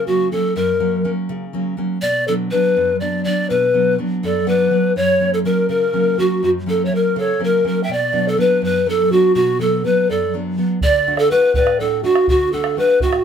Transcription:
Already playing: nylon-string guitar C#3
0.07 nylon-string guitar F#3 A#3 C#4, pan flute F#4
0.32 nylon-string guitar F#3 A#3 C#4, pan flute A4
0.56 nylon-string guitar F#2, pan flute A#4
0.80 nylon-string guitar F#3 A#3 C#4
1.04 nylon-string guitar F#3 A#3 C#4
1.29 nylon-string guitar C#3
1.53 nylon-string guitar F#3 A#3 C#4
1.77 nylon-string guitar F#3 A#3 C#4
2.02 nylon-string guitar B2, pan flute D5
2.28 nylon-string guitar F#3 B3 D4, pan flute A4
2.51 nylon-string guitar F#3 B3 D4, pan flute B4
2.77 nylon-string guitar F#2
3.00 nylon-string guitar F#3 B3 D4, pan flute D5
3.24 nylon-string guitar F#3 B3 D4, pan flute D5
3.50 nylon-string guitar B2, pan flute B4
3.74 nylon-string guitar F#3 B3 D4
3.98 nylon-string guitar F#3 B3 D4
4.23 nylon-string guitar F#2, pan flute A4 D5
4.46 nylon-string guitar F#3 B3 D4 F#5, pan flute B4
4.71 nylon-string guitar F#3 B3 D4
4.96 nylon-string guitar F#2, pan flute C#5
5.20 nylon-string guitar F#3 A#3 C#4
5.34 pan flute A4
5.45 nylon-string guitar F#3 A#3 C#4, pan flute A#4
5.69 nylon-string guitar C#3, pan flute A#4
5.93 nylon-string guitar F#3 A#3 C#4
6.18 nylon-string guitar F#3 A#3 C#4, pan flute F#4
6.43 nylon-string guitar F#2, pan flute F#4
6.66 nylon-string guitar F#3 A#3 C#4, pan flute A4
6.70 pan flute A4
6.85 pan flute C#5 E5
6.91 nylon-string guitar F#3 A#3 C#4, pan flute A#4
7.16 nylon-string guitar C#3, pan flute A4 C#5
7.39 nylon-string guitar F#3 A#3 C#4, pan flute A#4
7.44 pan flute A#4
7.64 nylon-string guitar F#3 A#3 C#4, pan flute A#4
7.83 pan flute E5 G5
7.89 nylon-string guitar B2, pan flute D5
8.13 nylon-string guitar F#3 B3 D4
8.28 pan flute A4
8.37 nylon-string guitar F#3 B3 D4, pan flute B4
8.62 nylon-string guitar F#2, pan flute B4
8.86 nylon-string guitar F#3 B3 D4, pan flute A4
9.11 nylon-string guitar F#3 B3 D4, pan flute F#4
9.35 nylon-string guitar B2, pan flute F#4
9.59 nylon-string guitar F#3 B3 D4, pan flute A4
9.84 nylon-string guitar F#3 B3 D4, pan flute B4
10.08 nylon-string guitar F#2, pan flute A4 D5
10.34 nylon-string guitar F#3 B3 D4
10.58 nylon-string guitar F#3 B3 D4
10.81 nylon-string guitar D3, pan flute D5, bombo low
11.07 nylon-string guitar A3 D4 F#4
11.17 pan flute A4, bombo rim
11.31 nylon-string guitar A3 D4 F#4, pan flute B4
11.42 bombo rim
11.54 nylon-string guitar A2, pan flute B4 D5, bombo low
11.67 bombo rim
11.80 nylon-string guitar A3 D4 F#4, pan flute A4
12.03 nylon-string guitar A3 D4 F#4, pan flute F#4
12.15 bombo rim
12.28 nylon-string guitar D3, pan flute F#4, bombo low
12.53 nylon-string guitar A3 D4 F#4, pan flute A4
12.64 bombo rim
12.77 nylon-string guitar A3 D4 F#4, pan flute B4
12.89 bombo rim
13.00 nylon-string guitar A2, pan flute F#4, bombo low
13.13 bombo rim

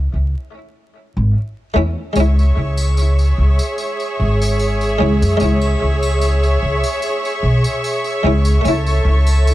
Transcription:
Already playing: harpsichord A3 C#4 E4
0.14 upright bass C#2
1.17 upright bass G#1
1.74 upright bass E2, harpsichord A3 C#4 E4
2.13 upright bass C#2, harpsichord G#3 C#4, string section G#4 C#5 E5 C#6, tambourine
2.20 harpsichord E4
2.39 tambourine
2.57 upright bass C#2
2.77 tambourine, triangle
2.97 tambourine
3.19 tambourine
3.38 upright bass C#2
3.59 tambourine
3.78 tambourine
4.00 tambourine
4.20 upright bass G#1
4.41 tambourine
4.59 tambourine
4.81 tambourine
4.99 upright bass C#2, harpsichord G#3 C#4 E4
5.22 upright bass F#2, tambourine
5.37 harpsichord G#3 C#4, tambourine
5.41 upright bass C#2, harpsichord E4
5.62 tambourine, triangle
5.82 upright bass C#2
6.03 tambourine, triangle
6.21 tambourine
6.43 tambourine
6.62 upright bass C#2
6.84 tambourine
7.02 tambourine
7.25 tambourine
7.43 upright bass B1
7.64 tambourine
7.84 tambourine
8.04 tambourine
8.23 upright bass C#2, harpsichord G#3 C#4 E4
8.45 tambourine
8.61 harpsichord A3 C#4, tambourine
8.65 upright bass C#2, harpsichord E4, string section A4 C#5
8.87 tambourine
9.05 upright bass C#2
9.27 tambourine, triangle
9.47 tambourine

